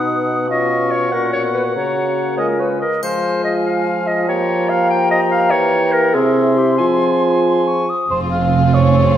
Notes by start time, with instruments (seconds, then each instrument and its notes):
Already playing: bassoon B2, french horn section B3 D#4, clarinet B4, cor anglais F#5, flute D#6
0.49 french horn section C#4 F4, clarinet D#5, cor anglais F5, flute C#6
0.91 clarinet C#5
1.12 bassoon A#2, french horn section C#4 F#4, clarinet A#4, cor anglais F#5
1.33 clarinet C#5
1.44 french horn section B3
1.54 clarinet B4
1.74 bassoon C#3, french horn section A#3 F#4, clarinet C#5, flute A#5
2.37 french horn section G#3 F4, clarinet A#4, cor anglais D#5, flute G#5
2.59 clarinet B4, cor anglais C#5
2.80 clarinet A#4, cor anglais D#5
3.02 bassoon F3, french horn section G#3 F4, clarinet C5, cor anglais F5, flute G#5, triangle
3.44 clarinet D#5
3.66 clarinet F5
4.07 clarinet D#5
4.28 french horn section A#3 G4, clarinet C#5, cor anglais G5, flute A#5
4.69 clarinet F5
4.90 clarinet G5
5.11 clarinet D#5
5.31 clarinet F5
5.51 bassoon E3, clarinet C#5
5.92 clarinet A#4
6.14 bassoon C3, french horn section C4 E4, clarinet G#4, cor anglais E5, flute C6
6.57 clarinet G4
6.78 bassoon F3, clarinet F4, french horn section G#4, cor anglais G#5
7.45 flute C6
7.67 flute C#6
7.90 flute D#6
8.10 double bass section F1, cello section F2, viola section C4, violin section F4 G#4, cor anglais C5
8.31 cor anglais F5
8.74 cor anglais C#5